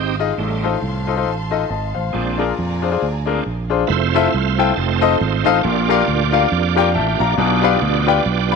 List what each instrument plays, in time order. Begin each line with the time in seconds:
Already playing: fingered electric bass G#1, tonewheel organ C4 D#4 G4, string section D#5 F5 C6
0.20 grand piano D#4 F4 G#4 D#5
0.38 fingered electric bass A1, grand piano A2, tonewheel organ G3 A3 D#4, string section A5 C6
0.63 grand piano D#4 F4 A4 C5
0.82 fingered electric bass C2
1.07 grand piano D#4 F4 A4 C5
1.16 grand piano D#4 F4 A4 C5
1.26 fingered electric bass A1
1.51 grand piano D#4 F4 A4 D#5
1.69 fingered electric bass G#1, grand piano D#5 A5
1.94 fingered electric bass A1, grand piano C5 F5
2.13 fingered electric bass A#1, grand piano A#2, tonewheel organ G#3 C4 D4, string section D5 G#5 A#5
2.38 grand piano D4 F4 G#4 A#4
2.59 fingered electric bass F2
2.82 grand piano D4 F4 G#4 C5
2.91 grand piano D4 F4 G#4 C5
3.02 fingered electric bass D2
3.26 tonewheel organ G#3 C4 D4, grand piano D4 F4 G#4 A#4
3.46 fingered electric bass A#1
3.70 grand piano D4 F4 G#4 C5
3.87 fingered electric bass F1, tonewheel organ A3 C4 E4 F4 B4
3.93 tonewheel organ C5
4.15 grand piano E4 F4 A4 C5 E5
4.33 fingered electric bass C2, tonewheel organ F5
4.57 grand piano E4 F4 A4 C5 G5, tonewheel organ A5
4.75 fingered electric bass F1, tonewheel organ A3 C4 D#4 F4 C5
5.01 grand piano D#4 F4 A4 C5 D#5
5.21 fingered electric bass G#1
5.45 fingered electric bass A1, grand piano D#4 F4 A4 C5 F5
5.63 fingered electric bass A#1, grand piano A#2, tonewheel organ A#3 D4 F4 G4 D5
5.89 grand piano F4 G4 A#4 D5 F5
6.08 fingered electric bass D2
6.32 grand piano F4 G4 A#4 D5 F5
6.52 fingered electric bass F2
6.76 grand piano F4 G4 A#4 D5 G5
6.95 fingered electric bass A1, grand piano E5 A5, tonewheel organ G5
7.20 fingered electric bass A#1, tonewheel organ D5, grand piano F5 A#5
7.37 fingered electric bass B1, grand piano B2, tonewheel organ B3 D4 F4 G4 D5
7.62 grand piano F4 G4 B4 D5 F5
7.82 fingered electric bass D2
8.07 grand piano F4 G4 B4 D5 G5
8.26 fingered electric bass B1
8.52 grand piano F5 B5